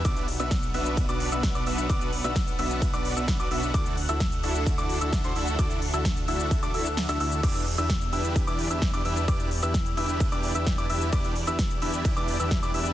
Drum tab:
CC |----------------|----------------|----------------|----------------|
RD |x---x---x---x---|x---x---x---x---|x---x---x---x---|x---x---x---x---|
HH |xxoxxxo-xxoxxxo-|xxo-xxo-xxoxxxox|xxoxxxoxxxoxxxox|xxo-xxoxxxoxxxox|
SH |xx-xxx-xxx-xxx-x|xx-xxx-xxx-xxx-x|xx-xxx-xxx-xxx-x|xx-xxx-xxx-xxx-x|
SD |----o-------o---|----o-------o---|----o-------o---|----o-------o---|
BD |o---o---o---o---|o---o---o---o---|o---o---o---o---|o---o---o-------|

CC |x---------------|----------------|----------------|
RD |x---x---x---x---|x---x---x---x---|x---x---x---x---|
HH |xxoxxxoxxxoxxxox|xxo-xxo-xxoxxxox|xxoxxxoxxxoxxxox|
SH |xx-xxx-xxx-xxx-x|xx-xxx-xxx-xxx-x|xx-xxx-xxx-xxx-x|
SD |----o-------o---|----o-------o---|----o-------o---|
BD |o---o---o---o---|o---o---o---o---|o---o---o---o---|